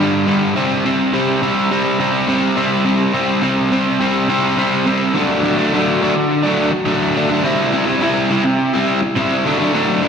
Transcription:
0.00 overdriven electric guitar G2 D3 G3
0.27 overdriven electric guitar G2 D3 G3
0.56 overdriven electric guitar C3 G3 C4
0.85 overdriven electric guitar C3 G3 C4
1.13 overdriven electric guitar C3 G3 C4
1.42 overdriven electric guitar C3 G3 C4
1.71 overdriven electric guitar C3 G3 C4
1.99 overdriven electric guitar C3 G3 C4
2.28 overdriven electric guitar C3 G3 C4
2.56 overdriven electric guitar C3 G3 C4
2.85 overdriven electric guitar C3 G3 C4
3.14 overdriven electric guitar C3 G3 C4
3.42 overdriven electric guitar C3 G3 C4
3.71 overdriven electric guitar C3 G3 C4
4.00 overdriven electric guitar C3 G3 C4
4.29 overdriven electric guitar C3 G3 C4
4.57 overdriven electric guitar C3 G3 C4
4.86 overdriven electric guitar C3 G3 C4
5.14 overdriven electric guitar D3 F#3 A3 D4
5.43 overdriven electric guitar D3 F#3 A3 D4
5.57 overdriven electric guitar F#3 A3 D4
5.72 overdriven electric guitar D3 F#3 A3 D4
6.01 overdriven electric guitar D3 F#3 A3 D4
6.16 muted overdriven electric guitar stroke
6.43 overdriven electric guitar F#3 A3 D4
6.72 muted overdriven electric guitar stroke
6.86 overdriven electric guitar D3 F#3 A3 D4
7.14 overdriven electric guitar D3 F#3 A3 D4
7.29 overdriven electric guitar F#3 A3 D4
7.43 overdriven electric guitar C3 G3 C4 E4
7.72 overdriven electric guitar C3 G3 C4 E4
7.86 overdriven electric guitar G3 C4 E4
8.01 overdriven electric guitar C3 G3 C4 E4
8.30 overdriven electric guitar C3 G3 C4 E4
8.45 muted overdriven electric guitar stroke
8.73 overdriven electric guitar G3 C4 E4
9.02 muted overdriven electric guitar stroke
9.16 overdriven electric guitar C3 G3 C4 E4
9.45 overdriven electric guitar D3 F#3 A3 D4
9.59 overdriven electric guitar F#3 A3 D4
9.74 overdriven electric guitar D3 F#3 A3 D4
10.02 overdriven electric guitar D3 F#3 A3 D4

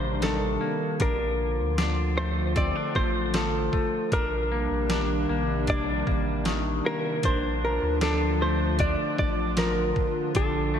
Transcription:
Already playing: sub bass A1, analog synth pad C3 D#3 G3 D4, clean electric guitar A#3 D4, hollow-body jazz guitar C5
0.22 clean electric guitar D#3, hollow-body jazz guitar A4, snare, closed hi-hat, tambourine
0.61 clean electric guitar A#3
1.00 sub bass A#1, analog synth pad D3 F3 F4, clean electric guitar D4, hollow-body jazz guitar A#4, kick, closed hi-hat
1.58 sub bass D2
1.78 clean electric guitar D4, snare, closed hi-hat, tambourine
2.17 clean electric guitar A3, hollow-body jazz guitar C5
2.56 clean electric guitar C4, hollow-body jazz guitar D5, kick, closed hi-hat
2.76 clean electric guitar D4
2.95 sub bass A1, clean electric guitar A3, hollow-body jazz guitar C5, kick
3.34 clean electric guitar F3, hollow-body jazz guitar A4, snare, closed hi-hat, tambourine
3.73 clean electric guitar A3, kick
4.12 sub bass A#1, analog synth pad C3 D#3 G3 D4, clean electric guitar D4, hollow-body jazz guitar A#4, kick, closed hi-hat
4.52 clean electric guitar A#3
4.70 sub bass A#1
4.90 clean electric guitar D4, snare, closed hi-hat, tambourine
5.29 sub bass A#1, clean electric guitar A#3
5.67 clean electric guitar D4, hollow-body jazz guitar D5, kick, closed hi-hat
6.07 sub bass A1, clean electric guitar A#3, kick
6.45 clean electric guitar D#3, snare, closed hi-hat, tambourine
6.85 clean electric guitar A#3, hollow-body jazz guitar A#4
7.23 sub bass A#1, analog synth pad D3 F3 D4 F4, clean electric guitar D4, hollow-body jazz guitar C5, kick, closed hi-hat
7.65 hollow-body jazz guitar A#4
7.82 sub bass D2
8.01 clean electric guitar D4, hollow-body jazz guitar A4, snare, closed hi-hat, tambourine
8.41 clean electric guitar A3, hollow-body jazz guitar C5
8.79 clean electric guitar D4, hollow-body jazz guitar D5, kick, closed hi-hat
9.19 sub bass A1, hollow-body jazz guitar D5, kick
9.57 clean electric guitar F3, hollow-body jazz guitar A#4, snare, closed hi-hat, tambourine
9.96 kick
10.35 sub bass A#1, analog synth pad F3, clean electric guitar D4, hollow-body jazz guitar A4, kick, closed hi-hat
10.74 clean electric guitar A3

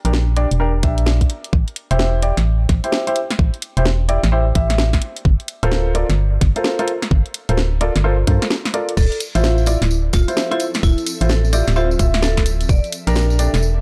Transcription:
0.05 fm bass A#1, grand piano D4 G4 A#4, closed hi-hat
0.13 snare
0.37 grand piano D4 G4 D5, closed hi-hat
0.51 fm bass E1, closed hi-hat
0.60 grand piano D4 G4 A#4
0.83 fm bass A#1, grand piano D4 G4 E5, kick, closed hi-hat
0.98 closed hi-hat
1.06 snare
1.21 kick, closed hi-hat
1.30 closed hi-hat
1.44 closed hi-hat
1.53 fm bass A1, kick
1.68 closed hi-hat
1.76 closed hi-hat
1.91 fm bass E1, grand piano E4 G4 C5, closed hi-hat
1.99 snare
2.22 grand piano E4 G4 D5, closed hi-hat
2.37 fm bass A1, snare, closed hi-hat
2.69 fm bass A1, kick, snare, closed hi-hat
2.84 grand piano E4 G4 C5, closed hi-hat
2.92 snare
3.07 grand piano E4 G4 C5, closed hi-hat
3.16 closed hi-hat
3.31 snare, closed hi-hat
3.39 fm bass A1, kick
3.54 closed hi-hat
3.62 closed hi-hat
3.77 fm bass E1, grand piano E4 G4 C5, closed hi-hat
3.86 snare
4.09 grand piano E4 G4 D5, closed hi-hat
4.23 fm bass A1, snare, closed hi-hat
4.32 grand piano E4 G4 C5
4.55 fm bass A1, grand piano E4 G4 E5, kick, closed hi-hat
4.70 snare, closed hi-hat
4.78 snare
4.93 kick, snare, closed hi-hat
5.02 closed hi-hat
5.16 closed hi-hat
5.25 fm bass G1, kick
5.40 closed hi-hat
5.48 closed hi-hat
5.63 fm bass D1, grand piano F4 A4 A#4 C5, closed hi-hat
5.72 snare
5.95 grand piano F4 A4 A#4 D5, closed hi-hat
6.09 fm bass G1, snare, closed hi-hat
6.41 fm bass G1, kick, snare, closed hi-hat
6.56 grand piano F4 A4 A#4 C5, closed hi-hat
6.64 snare
6.79 grand piano F4 A4 A#4 C5, closed hi-hat
6.88 closed hi-hat
7.02 snare, closed hi-hat
7.11 fm bass G1, kick
7.26 closed hi-hat
7.34 closed hi-hat
7.49 fm bass D1, grand piano F4 A4 A#4 C5, closed hi-hat
7.58 snare
7.81 grand piano F4 A4 A#4 D5, closed hi-hat
7.96 fm bass G1, snare, closed hi-hat
8.04 grand piano F4 A4 A#4 C5
8.27 fm bass G2, grand piano F4 A4 A#4 C5, kick, closed hi-hat
8.42 snare, closed hi-hat
8.50 snare
8.65 snare, closed hi-hat
8.74 grand piano F4 A4 A#4 D5, closed hi-hat
8.89 closed hi-hat
8.97 fm bass D1, ambient pad F3 C4 A4 E5, vibraphone A4, kick, crash, tambourine
9.12 closed hi-hat, tambourine
9.20 closed hi-hat, tambourine
9.35 fm bass A1, grand piano E4 F4 C5, vibraphone F4, closed hi-hat, tambourine
9.44 snare, tambourine
9.58 tambourine
9.66 vibraphone E4, grand piano E4 F4 D5, closed hi-hat, tambourine
9.82 fm bass D1, snare, closed hi-hat, tambourine
9.91 tambourine
10.13 fm bass D1, vibraphone F4, kick, snare, closed hi-hat, tambourine
10.28 grand piano E4 F4 C5, closed hi-hat, tambourine
10.37 snare, tambourine
10.51 vibraphone E4, grand piano E4 F4 C5, closed hi-hat
10.60 closed hi-hat, tambourine
10.74 snare, closed hi-hat, tambourine
10.83 fm bass D1, vibraphone E4, kick, tambourine
10.98 closed hi-hat, tambourine
11.07 closed hi-hat, tambourine
11.21 fm bass A1, grand piano E4 F4 C5, closed hi-hat, tambourine
11.29 vibraphone A4, snare, tambourine
11.44 tambourine
11.53 grand piano E4 F4 D5, vibraphone G4, closed hi-hat, tambourine
11.67 fm bass D1, snare, closed hi-hat, tambourine
11.76 grand piano E4 F4 C5, vibraphone F4, tambourine
11.91 tambourine
11.99 fm bass D1, grand piano E4 F4 E5, kick, closed hi-hat, tambourine
12.14 snare, closed hi-hat, tambourine
12.22 vibraphone A4, snare, tambourine
12.37 kick, snare, closed hi-hat
12.46 closed hi-hat, tambourine
12.61 closed hi-hat, tambourine
12.69 fm bass E1, ambient pad A#3 D4 G4, vibraphone D5, kick, tambourine
12.84 closed hi-hat, tambourine
12.92 closed hi-hat, tambourine
13.07 fm bass A#1, grand piano D4 G4 A#4, vibraphone A#4, closed hi-hat, tambourine
13.15 snare, tambourine
13.30 tambourine
13.39 grand piano D4 G4 D5, vibraphone A4, closed hi-hat, tambourine
13.54 fm bass E1, snare, closed hi-hat, tambourine
13.62 tambourine

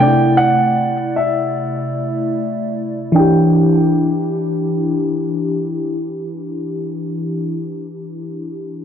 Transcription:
Already playing: grand piano G5
0.00 fm electric piano C3 A3 D4 D5
0.08 fm electric piano E4
0.37 grand piano F#5
1.16 grand piano E5
3.12 fm electric piano E3 D4, grand piano G5
3.17 fm electric piano E4 G4

